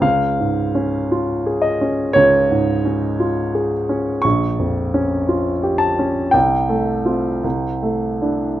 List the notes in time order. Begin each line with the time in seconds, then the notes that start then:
0.01 C#2 F5
0.40 G#2
0.75 C#4
1.12 F4
1.46 G#4
1.62 D#5
1.81 C#4
2.13 C#2 C#5
2.51 G#2
2.85 C#4
3.20 F4
3.55 G#4
3.89 C#4
4.22 A#1 C#6
4.59 F2
4.94 C#4
5.28 F4
5.63 G4
5.78 A5
5.99 C#4
6.31 C2 G5
6.69 A3
7.05 C4 F4
7.44 C2
7.83 A3
8.22 D4 E4